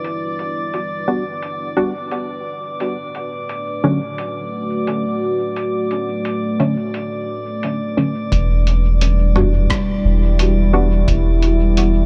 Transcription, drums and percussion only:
0.04 closed hi-hat soft
0.39 closed hi-hat soft
0.74 closed hi-hat soft
1.43 closed hi-hat soft
2.11 closed hi-hat soft
2.80 closed hi-hat soft
3.15 closed hi-hat soft
3.49 closed hi-hat soft
4.18 closed hi-hat soft
4.87 closed hi-hat soft
5.56 closed hi-hat soft
5.91 closed hi-hat soft
6.25 closed hi-hat soft
6.60 closed hi-hat soft
6.94 closed hi-hat soft
7.63 closed hi-hat soft
7.98 closed hi-hat soft
8.32 kick loud
8.32 closed hi-hat medium
8.67 closed hi-hat soft
9.01 closed hi-hat medium
9.36 mid tom medium
9.70 kick loud
9.70 cross-stick medium
9.70 closed hi-hat medium
10.39 closed hi-hat medium
11.08 kick loud
11.08 closed hi-hat medium
11.43 closed hi-hat soft
11.77 closed hi-hat medium

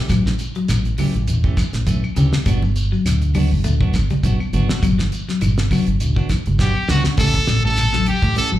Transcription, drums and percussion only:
0.09 kick medium
0.09 snare soft
0.09 closed hi-hat medium
0.09 claves medium
0.09 shekere medium
0.25 snare soft
0.25 high conga medium
0.25 shekere soft
0.39 closed hi-hat soft
0.39 shekere medium
0.55 closed hi-hat soft
0.55 shekere soft
0.68 snare soft
0.68 closed hi-hat medium
0.68 high conga medium
0.68 claves medium
0.68 shekere medium
0.85 closed hi-hat soft
0.85 shekere soft
0.98 open hi-hat medium
0.98 high conga medium
0.98 low conga medium
0.98 claves medium
0.98 shekere medium
1.14 closed hi-hat soft
1.14 shekere soft
1.28 closed hi-hat medium
1.28 shekere medium
1.44 kick medium
1.44 shekere soft
1.57 kick medium
1.57 snare soft
1.57 closed hi-hat soft
1.57 high conga medium
1.57 claves medium
1.57 shekere medium
1.73 snare soft
1.73 closed hi-hat soft
1.73 shekere soft
1.87 kick medium
1.87 closed hi-hat medium
1.87 high conga medium
1.87 shekere medium
2.04 claves medium
2.04 shekere soft
2.16 closed hi-hat medium
2.16 low conga medium
2.16 shekere medium
2.33 snare medium
2.33 shekere soft
2.46 kick medium
2.46 closed hi-hat medium
2.46 claves medium
2.46 shekere medium
2.62 high conga medium
2.62 shekere soft
2.76 closed hi-hat soft
2.76 shekere medium
2.93 shekere soft
3.06 snare soft
3.06 closed hi-hat medium
3.06 claves medium
3.06 shekere medium
3.22 closed hi-hat soft
3.22 shekere soft
3.34 open hi-hat medium
3.34 high conga medium
3.34 low conga medium
3.34 claves medium
3.34 shekere medium
3.52 shekere soft
3.64 closed hi-hat medium
3.64 shekere medium
3.81 kick medium
3.81 high conga medium
3.81 shekere soft
3.94 kick medium
3.94 snare soft
3.94 closed hi-hat soft
3.94 high conga medium
3.94 claves medium
3.94 shekere medium
4.10 closed hi-hat soft
4.10 low conga medium
4.10 shekere soft
4.23 kick medium
4.23 closed hi-hat medium
4.23 high conga medium
4.23 shekere medium
4.40 claves medium
4.40 shekere soft
4.53 closed hi-hat soft
4.53 high conga medium
4.53 low conga medium
4.53 shekere medium
4.69 snare medium
4.69 shekere soft
4.83 kick medium
4.83 closed hi-hat medium
4.83 claves medium
4.83 shekere medium
4.99 snare soft
4.99 high conga medium
4.99 shekere soft
5.12 closed hi-hat soft
5.12 shekere medium
5.29 snare soft
5.29 closed hi-hat soft
5.29 shekere soft
5.41 closed hi-hat medium
5.41 high conga medium
5.41 claves medium
5.41 shekere medium
5.58 snare medium
5.58 closed hi-hat soft
5.58 shekere soft
5.71 kick medium
5.71 open hi-hat medium
5.71 high conga medium
5.71 low conga medium
5.71 claves medium
5.71 shekere medium
5.87 closed hi-hat soft
5.87 shekere soft
6.00 closed hi-hat medium
6.00 shekere medium
6.16 kick medium
6.16 shekere soft
6.29 kick medium
6.29 snare soft
6.29 closed hi-hat medium
6.29 high conga medium
6.29 claves medium
6.29 shekere medium
6.46 closed hi-hat soft
6.46 low conga medium
6.46 shekere soft
6.59 kick medium
6.59 snare soft
6.59 high conga medium
6.59 shekere medium
6.75 claves medium
6.75 shekere soft
6.88 snare medium
6.88 low conga medium
6.88 shekere medium
7.04 snare medium
7.04 shekere soft
7.17 kick medium
7.17 closed hi-hat medium
7.17 high conga soft
7.17 low conga medium
7.17 claves medium
7.17 shekere medium
7.34 kick medium
7.47 snare medium
7.47 closed hi-hat soft
7.47 shekere medium
7.64 shekere soft
7.77 snare soft
7.77 closed hi-hat medium
7.77 high conga soft
7.77 claves medium
7.77 shekere loud
7.93 snare soft
7.93 high conga medium
8.06 closed hi-hat medium
8.06 high conga medium
8.06 claves medium
8.06 shekere soft
8.22 kick medium
8.22 closed hi-hat soft
8.36 closed hi-hat medium
8.36 high conga soft
8.36 shekere medium

